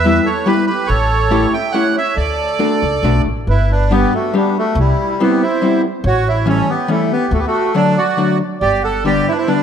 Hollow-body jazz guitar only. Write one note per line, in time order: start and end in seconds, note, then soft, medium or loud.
0.04 0.27 G3 medium
0.04 0.27 B3 medium
0.04 0.27 E4 medium
0.04 0.27 G4 medium
0.46 0.69 G3 medium
0.46 0.69 B3 medium
0.46 0.69 E4 medium
0.46 0.69 G4 medium
1.31 1.53 A3 medium
1.31 1.53 C#4 medium
1.31 1.53 E4 medium
1.31 1.53 G4 medium
1.74 1.96 A3 medium
1.74 1.96 C#4 medium
1.74 1.96 E4 medium
1.74 1.96 G4 medium
2.59 2.82 A3 medium
2.59 2.82 D4 medium
2.59 2.82 F#4 soft
2.59 2.82 A4 medium
3.04 3.26 A3 medium
3.04 3.26 D4 medium
3.04 3.26 F#4 medium
3.04 3.26 A4 medium
3.91 4.13 G3 medium
3.91 4.13 B3 medium
3.91 4.13 D4 medium
3.91 4.13 G4 medium
4.33 4.56 G3 medium
4.33 4.56 B3 soft
4.33 4.56 D4 soft
4.33 4.56 G4 medium
5.20 5.42 G3 medium
5.20 5.42 B3 soft
5.20 5.42 C4 medium
5.20 5.42 E4 medium
5.62 5.84 G3 medium
5.62 5.84 B3 soft
5.62 5.84 C4 medium
5.62 5.84 E4 medium
6.46 6.68 E3 medium
6.46 6.68 G3 soft
6.46 6.68 A3 medium
6.46 6.68 C#4 medium
6.88 7.11 E3 medium
6.88 7.11 G3 medium
6.88 7.11 A3 medium
6.88 7.11 C#4 medium
7.75 7.97 D3 medium
7.75 7.97 F#3 medium
7.75 7.97 A3 soft
7.75 7.98 D4 medium
8.17 8.40 D3 soft
8.17 8.40 F#3 medium
8.17 8.40 A3 soft
8.17 8.41 D4 medium
9.04 9.28 D3 medium
9.04 9.28 G3 medium
9.04 9.28 B3 medium
9.04 9.28 D4 medium
9.48 9.63 D3 medium
9.48 9.63 G3 soft
9.48 9.63 B3 medium
9.48 9.63 D4 medium